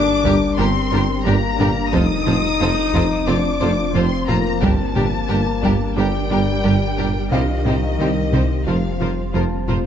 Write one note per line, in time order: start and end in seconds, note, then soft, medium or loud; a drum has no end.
0.00 1.95 G1 medium
0.00 1.89 G3 medium
0.00 0.11 A#3 medium
0.00 0.54 D4 loud
0.00 1.93 D4 medium
0.00 1.89 G4 medium
0.00 1.93 A#4 medium
0.00 0.54 D6 loud
0.24 0.33 G1 medium
0.24 0.38 G1 medium
0.24 0.33 G2 medium
0.24 0.32 G3 medium
0.24 0.45 G3 medium
0.24 0.32 D4 medium
0.24 0.33 G4 medium
0.24 0.33 A#4 medium
0.24 taiko medium
0.57 0.66 G1 medium
0.57 0.72 G1 medium
0.57 0.67 G2 medium
0.57 0.66 G3 medium
0.57 1.24 C4 loud
0.57 0.65 D4 medium
0.57 0.78 G4 medium
0.57 0.67 G4 medium
0.57 0.67 A#4 medium
0.57 1.25 C6 loud
0.91 1.05 G1 medium
0.91 1.00 G1 medium
0.91 1.00 G2 medium
0.91 1.00 G3 medium
0.91 1.00 D4 medium
0.91 1.12 G4 medium
0.91 1.01 G4 medium
0.91 1.01 A#4 medium
1.25 1.39 G1 medium
1.25 1.34 G1 medium
1.25 1.34 G2 medium
1.25 1.34 G3 medium
1.25 1.46 G3 loud
1.25 1.92 A#3 loud
1.25 1.34 D4 medium
1.25 1.34 G4 medium
1.25 1.34 A#4 medium
1.25 1.92 A#5 loud
1.59 1.72 G1 medium
1.59 1.67 G1 medium
1.59 1.68 G2 medium
1.59 1.67 G3 medium
1.59 1.67 D4 medium
1.59 1.79 G4 medium
1.59 1.68 G4 medium
1.59 1.68 A#4 medium
1.59 taiko low-mid soft
1.92 2.06 F1 medium
1.92 2.01 F1 medium
1.92 4.64 F1 medium
1.92 2.01 F2 medium
1.92 2.13 F3 medium
1.92 4.63 F3 medium
1.92 4.62 C4 medium
1.92 2.01 C4 medium
1.92 3.28 D#4 loud
1.92 4.62 F4 medium
1.92 2.01 F4 medium
1.92 2.01 A4 medium
1.92 4.63 C5 medium
1.92 2.01 C5 medium
1.92 3.28 D#6 loud
1.92 taiko loud
2.26 2.40 F1 medium
2.26 2.35 F1 medium
2.26 2.35 F2 medium
2.26 2.34 C4 medium
2.26 2.34 F4 medium
2.26 2.47 F4 medium
2.26 2.34 A4 medium
2.26 2.34 C5 medium
2.26 taiko low-mid medium
2.60 2.74 F1 medium
2.60 2.69 F1 medium
2.60 2.69 F2 medium
2.60 2.81 A3 medium
2.60 2.68 C4 medium
2.60 2.68 F4 medium
2.60 2.69 A4 medium
2.60 2.69 C5 medium
2.94 3.07 F1 medium
2.94 3.02 F1 medium
2.94 3.02 F2 medium
2.94 3.14 F3 medium
2.94 3.02 C4 medium
2.94 3.02 F4 medium
2.94 3.02 A4 medium
2.94 3.02 C5 medium
2.94 taiko medium
3.27 3.36 F1 medium
3.27 3.41 F1 medium
3.27 3.36 F2 medium
3.27 3.36 C4 medium
3.27 3.95 D4 medium
3.27 3.48 F4 medium
3.27 3.36 F4 medium
3.27 3.35 A4 medium
3.27 3.36 C5 medium
3.27 3.95 D6 loud
3.61 3.75 F1 medium
3.61 3.70 F1 medium
3.61 3.69 F2 medium
3.61 3.69 C4 medium
3.61 3.69 F4 medium
3.61 3.82 F4 medium
3.61 3.69 A4 medium
3.61 3.69 C5 medium
3.95 4.03 F1 medium
3.95 4.09 F1 medium
3.95 4.03 F2 medium
3.95 4.15 F3 loud
3.95 4.29 C4 medium
3.95 4.03 C4 medium
3.95 4.03 F4 medium
3.95 4.03 A4 medium
3.95 4.03 C5 medium
3.95 4.29 C6 loud
4.28 4.42 F1 medium
4.28 4.37 F1 medium
4.28 4.37 F2 medium
4.28 4.62 A#3 medium
4.28 4.36 C4 medium
4.28 4.36 F4 medium
4.28 4.49 F4 medium
4.28 4.36 A4 medium
4.28 4.36 C5 medium
4.28 4.62 A#5 loud
4.28 taiko low-mid soft
4.61 4.70 G1 medium
4.61 7.34 G1 medium
4.61 4.76 G1 medium
4.61 4.70 G2 medium
4.61 4.70 G3 medium
4.61 8.67 G3 medium
4.61 4.83 G3 loud
4.61 5.95 A#3 medium
4.61 4.70 D4 medium
4.61 7.32 D4 medium
4.61 4.70 G4 medium
4.61 8.67 G4 medium
4.61 4.69 A#4 medium
4.61 7.32 A#4 medium
4.61 5.98 A5 loud
4.61 taiko loud
4.96 5.10 G1 medium
4.96 5.04 G1 medium
4.96 5.04 G2 medium
4.96 5.04 G3 medium
4.96 5.04 D4 medium
4.96 5.04 G4 medium
4.96 5.16 G4 medium
4.96 5.04 A#4 medium
4.96 taiko low-mid medium
5.29 5.43 G1 medium
5.29 5.38 G1 medium
5.29 5.38 G2 medium
5.29 5.37 G3 medium
5.29 5.50 A#3 medium
5.29 5.37 D4 medium
5.29 5.37 G4 medium
5.29 5.37 A#4 medium
5.62 5.72 G1 medium
5.62 5.78 G1 medium
5.62 5.72 G2 medium
5.62 5.71 G3 medium
5.62 5.84 G3 loud
5.62 5.70 D4 medium
5.62 5.72 G4 medium
5.62 5.72 A#4 medium
5.62 taiko medium
5.96 6.11 G1 medium
5.96 6.05 G1 medium
5.96 6.05 G2 medium
5.96 6.04 G3 medium
5.96 7.15 G3 medium
5.96 6.04 D4 medium
5.96 7.95 D4 soft
5.96 6.18 G4 medium
5.96 6.06 G4 medium
5.96 6.06 A#4 medium
5.96 7.29 G5 loud
5.96 7.95 D6 soft
6.30 6.39 G1 medium
6.30 6.45 G1 medium
6.30 6.39 G2 medium
6.30 6.38 G3 medium
6.30 6.38 D4 medium
6.30 6.51 G4 medium
6.30 6.39 G4 medium
6.30 6.39 A#4 medium
6.64 6.78 G1 medium
6.64 6.73 G1 medium
6.64 6.73 G2 medium
6.64 6.85 G3 medium
6.64 6.72 G3 medium
6.64 6.73 D4 medium
6.64 6.72 G4 medium
6.64 6.72 A#4 medium
6.98 7.07 G1 medium
6.98 7.12 G1 medium
6.98 7.07 G2 medium
6.98 7.07 G3 medium
6.98 7.07 D4 medium
6.98 7.06 G4 medium
6.98 7.19 G4 medium
6.98 7.06 A#4 medium
6.98 taiko low-mid soft
7.32 7.46 C2 medium
7.32 8.68 C2 medium
7.32 7.41 C2 medium
7.32 7.52 C3 loud
7.32 7.40 C3 medium
7.32 8.64 D#3 medium
7.32 7.40 G3 medium
7.32 9.86 C4 medium
7.32 7.40 D#4 medium
7.32 9.31 F4 soft
7.32 7.41 G4 medium
7.32 9.86 C5 medium
7.32 7.40 C5 medium
7.32 8.64 D#5 medium
7.32 9.30 F5 medium
7.32 taiko medium
7.65 7.79 C2 medium
7.65 7.74 C2 medium
7.65 7.74 C3 medium
7.65 7.74 G3 medium
7.65 7.86 C4 medium
7.65 7.74 D#4 medium
7.65 7.75 G4 medium
7.65 7.75 C5 medium
7.65 taiko low-mid medium
7.99 8.13 C2 medium
7.99 8.08 C2 medium
7.99 8.07 C3 medium
7.99 8.19 D#3 medium
7.99 8.08 G3 medium
7.99 8.08 D#4 medium
7.99 8.08 G4 medium
7.99 8.08 C5 soft
8.33 8.47 C2 medium
8.33 8.41 C2 medium
8.33 8.53 C3 medium
8.33 8.41 C3 medium
8.33 8.42 G3 medium
8.33 8.41 D#4 medium
8.33 8.42 G4 medium
8.33 8.42 C5 soft
8.33 taiko medium
8.66 9.86 F1 medium
8.66 8.81 F1 medium
8.66 8.75 F1 medium
8.66 8.75 F2 medium
8.66 9.34 F3 medium
8.66 8.75 F3 medium
8.66 9.86 A#3 medium
8.66 9.86 F4 medium
8.66 8.87 F4 medium
8.66 8.75 F4 medium
8.66 8.75 A#4 soft
8.66 8.75 C5 medium
8.66 9.34 F5 medium
9.00 9.14 F1 medium
9.00 9.09 F1 medium
9.00 9.09 F2 medium
9.00 9.08 F3 medium
9.00 9.21 F4 medium
9.00 9.09 F4 medium
9.00 9.09 A#4 soft
9.00 9.09 C5 soft
9.34 9.48 F1 medium
9.34 9.43 F1 medium
9.34 9.43 F2 medium
9.34 9.55 F3 medium
9.34 9.42 F3 medium
9.34 9.42 F4 medium
9.34 9.43 A#4 medium
9.34 9.43 C5 soft
9.34 9.86 A5 soft
9.67 9.81 F1 medium
9.67 9.77 F1 medium
9.67 9.76 F2 medium
9.67 9.76 F3 soft
9.67 9.86 F4 medium
9.67 9.77 F4 medium
9.67 9.76 A#4 soft
9.67 9.76 C5 medium
9.67 taiko low-mid soft